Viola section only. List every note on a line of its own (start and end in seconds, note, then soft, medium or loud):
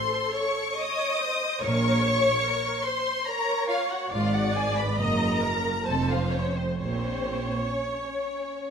0.00 0.78 A4 medium
0.79 1.20 C#5 loud
1.21 1.62 C5 medium
1.63 2.04 A#4 medium
2.03 2.44 C#5 medium
2.45 2.86 A#4 medium
2.86 3.27 C5 medium
3.27 4.12 C#5 medium
4.12 4.99 D5 loud
4.99 5.42 D#5 loud
5.43 5.87 A#4 medium
5.87 6.79 C5 medium
6.80 8.70 C#5 medium